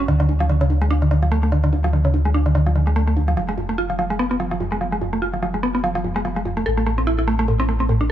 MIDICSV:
0, 0, Header, 1, 3, 480
1, 0, Start_track
1, 0, Tempo, 410959
1, 97, Time_signature, 4, 2, 24, 8
1, 9481, End_track
2, 0, Start_track
2, 0, Title_t, "Synth arpeggio sound"
2, 0, Program_c, 0, 84
2, 97, Note_on_c, 0, 50, 106
2, 174, Note_off_c, 0, 50, 0
2, 232, Note_on_c, 0, 50, 105
2, 292, Note_off_c, 0, 50, 0
2, 337, Note_on_c, 0, 38, 80
2, 414, Note_off_c, 0, 38, 0
2, 472, Note_on_c, 0, 53, 107
2, 532, Note_off_c, 0, 53, 0
2, 577, Note_on_c, 0, 50, 85
2, 654, Note_off_c, 0, 50, 0
2, 712, Note_on_c, 0, 49, 105
2, 772, Note_off_c, 0, 49, 0
2, 817, Note_on_c, 0, 38, 76
2, 933, Note_off_c, 0, 38, 0
2, 952, Note_on_c, 0, 56, 82
2, 1012, Note_off_c, 0, 56, 0
2, 1057, Note_on_c, 0, 62, 83
2, 1134, Note_off_c, 0, 62, 0
2, 1192, Note_on_c, 0, 50, 82
2, 1252, Note_off_c, 0, 50, 0
2, 1298, Note_on_c, 0, 50, 102
2, 1374, Note_off_c, 0, 50, 0
2, 1432, Note_on_c, 0, 53, 82
2, 1522, Note_off_c, 0, 53, 0
2, 1537, Note_on_c, 0, 57, 101
2, 1614, Note_off_c, 0, 57, 0
2, 1672, Note_on_c, 0, 57, 70
2, 1732, Note_off_c, 0, 57, 0
2, 1777, Note_on_c, 0, 50, 99
2, 1854, Note_off_c, 0, 50, 0
2, 1912, Note_on_c, 0, 50, 102
2, 1972, Note_off_c, 0, 50, 0
2, 2018, Note_on_c, 0, 38, 82
2, 2094, Note_off_c, 0, 38, 0
2, 2152, Note_on_c, 0, 53, 103
2, 2212, Note_off_c, 0, 53, 0
2, 2257, Note_on_c, 0, 50, 78
2, 2334, Note_off_c, 0, 50, 0
2, 2392, Note_on_c, 0, 49, 105
2, 2452, Note_off_c, 0, 49, 0
2, 2497, Note_on_c, 0, 38, 86
2, 2613, Note_off_c, 0, 38, 0
2, 2632, Note_on_c, 0, 56, 79
2, 2692, Note_off_c, 0, 56, 0
2, 2738, Note_on_c, 0, 62, 79
2, 2814, Note_off_c, 0, 62, 0
2, 2872, Note_on_c, 0, 50, 83
2, 2932, Note_off_c, 0, 50, 0
2, 2978, Note_on_c, 0, 50, 101
2, 3055, Note_off_c, 0, 50, 0
2, 3112, Note_on_c, 0, 53, 79
2, 3203, Note_off_c, 0, 53, 0
2, 3218, Note_on_c, 0, 50, 78
2, 3295, Note_off_c, 0, 50, 0
2, 3352, Note_on_c, 0, 56, 80
2, 3442, Note_off_c, 0, 56, 0
2, 3458, Note_on_c, 0, 57, 95
2, 3534, Note_off_c, 0, 57, 0
2, 3591, Note_on_c, 0, 57, 71
2, 3628, Note_off_c, 0, 57, 0
2, 3698, Note_on_c, 0, 38, 77
2, 3775, Note_off_c, 0, 38, 0
2, 3832, Note_on_c, 0, 53, 83
2, 3892, Note_off_c, 0, 53, 0
2, 3937, Note_on_c, 0, 53, 85
2, 4014, Note_off_c, 0, 53, 0
2, 4072, Note_on_c, 0, 56, 80
2, 4108, Note_off_c, 0, 56, 0
2, 4177, Note_on_c, 0, 41, 74
2, 4293, Note_off_c, 0, 41, 0
2, 4311, Note_on_c, 0, 57, 79
2, 4372, Note_off_c, 0, 57, 0
2, 4417, Note_on_c, 0, 65, 85
2, 4494, Note_off_c, 0, 65, 0
2, 4551, Note_on_c, 0, 53, 78
2, 4612, Note_off_c, 0, 53, 0
2, 4657, Note_on_c, 0, 53, 101
2, 4734, Note_off_c, 0, 53, 0
2, 4792, Note_on_c, 0, 56, 81
2, 4882, Note_off_c, 0, 56, 0
2, 4897, Note_on_c, 0, 59, 104
2, 4974, Note_off_c, 0, 59, 0
2, 5032, Note_on_c, 0, 59, 80
2, 5092, Note_off_c, 0, 59, 0
2, 5137, Note_on_c, 0, 53, 102
2, 5214, Note_off_c, 0, 53, 0
2, 5271, Note_on_c, 0, 53, 104
2, 5332, Note_off_c, 0, 53, 0
2, 5377, Note_on_c, 0, 41, 83
2, 5454, Note_off_c, 0, 41, 0
2, 5512, Note_on_c, 0, 56, 96
2, 5572, Note_off_c, 0, 56, 0
2, 5617, Note_on_c, 0, 53, 75
2, 5694, Note_off_c, 0, 53, 0
2, 5751, Note_on_c, 0, 56, 81
2, 5788, Note_off_c, 0, 56, 0
2, 5857, Note_on_c, 0, 41, 82
2, 5973, Note_off_c, 0, 41, 0
2, 5992, Note_on_c, 0, 57, 78
2, 6052, Note_off_c, 0, 57, 0
2, 6097, Note_on_c, 0, 65, 77
2, 6174, Note_off_c, 0, 65, 0
2, 6232, Note_on_c, 0, 53, 81
2, 6292, Note_off_c, 0, 53, 0
2, 6337, Note_on_c, 0, 53, 101
2, 6414, Note_off_c, 0, 53, 0
2, 6472, Note_on_c, 0, 56, 79
2, 6563, Note_off_c, 0, 56, 0
2, 6578, Note_on_c, 0, 59, 105
2, 6654, Note_off_c, 0, 59, 0
2, 6712, Note_on_c, 0, 59, 77
2, 6772, Note_off_c, 0, 59, 0
2, 6817, Note_on_c, 0, 53, 104
2, 6894, Note_off_c, 0, 53, 0
2, 6952, Note_on_c, 0, 53, 107
2, 7012, Note_off_c, 0, 53, 0
2, 7058, Note_on_c, 0, 41, 76
2, 7135, Note_off_c, 0, 41, 0
2, 7192, Note_on_c, 0, 56, 108
2, 7252, Note_off_c, 0, 56, 0
2, 7298, Note_on_c, 0, 53, 82
2, 7375, Note_off_c, 0, 53, 0
2, 7432, Note_on_c, 0, 56, 74
2, 7468, Note_off_c, 0, 56, 0
2, 7538, Note_on_c, 0, 41, 78
2, 7653, Note_off_c, 0, 41, 0
2, 7672, Note_on_c, 0, 57, 76
2, 7732, Note_off_c, 0, 57, 0
2, 7778, Note_on_c, 0, 69, 83
2, 7855, Note_off_c, 0, 69, 0
2, 7912, Note_on_c, 0, 57, 81
2, 7973, Note_off_c, 0, 57, 0
2, 8018, Note_on_c, 0, 57, 103
2, 8094, Note_off_c, 0, 57, 0
2, 8152, Note_on_c, 0, 60, 79
2, 8243, Note_off_c, 0, 60, 0
2, 8258, Note_on_c, 0, 64, 100
2, 8334, Note_off_c, 0, 64, 0
2, 8392, Note_on_c, 0, 64, 81
2, 8452, Note_off_c, 0, 64, 0
2, 8498, Note_on_c, 0, 57, 104
2, 8575, Note_off_c, 0, 57, 0
2, 8632, Note_on_c, 0, 57, 104
2, 8692, Note_off_c, 0, 57, 0
2, 8737, Note_on_c, 0, 45, 84
2, 8814, Note_off_c, 0, 45, 0
2, 8872, Note_on_c, 0, 60, 104
2, 8932, Note_off_c, 0, 60, 0
2, 8977, Note_on_c, 0, 57, 79
2, 9054, Note_off_c, 0, 57, 0
2, 9112, Note_on_c, 0, 60, 79
2, 9148, Note_off_c, 0, 60, 0
2, 9217, Note_on_c, 0, 45, 82
2, 9333, Note_off_c, 0, 45, 0
2, 9352, Note_on_c, 0, 62, 75
2, 9412, Note_off_c, 0, 62, 0
2, 9481, End_track
3, 0, Start_track
3, 0, Title_t, "Sub bass"
3, 0, Program_c, 1, 38
3, 97, Note_on_c, 1, 38, 86
3, 3916, Note_off_c, 1, 38, 0
3, 3937, Note_on_c, 1, 29, 85
3, 7756, Note_off_c, 1, 29, 0
3, 7777, Note_on_c, 1, 33, 88
3, 9481, Note_off_c, 1, 33, 0
3, 9481, End_track
0, 0, End_of_file